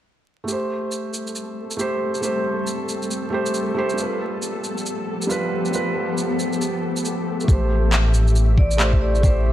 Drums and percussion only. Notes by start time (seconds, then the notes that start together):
0.48 shaker
0.92 shaker
1.14 shaker
1.27 shaker
1.35 shaker
1.71 shaker
1.79 shaker
2.14 shaker
2.23 shaker
2.67 shaker
2.89 shaker
3.02 shaker
3.11 shaker
3.46 shaker
3.54 shaker
3.89 shaker
3.98 shaker
4.42 shaker
4.64 shaker
4.78 shaker
4.86 shaker
5.22 shaker
5.30 shaker
5.65 shaker
5.73 shaker
6.18 shaker
6.39 shaker
6.53 shaker
6.61 shaker
6.97 shaker
7.05 shaker
7.40 shaker
7.48 kick, shaker
7.92 clap, shaker
8.14 shaker
8.27 shaker
8.36 shaker
8.58 kick
8.71 shaker
8.80 clap, shaker
8.93 kick
9.15 shaker
9.23 kick, shaker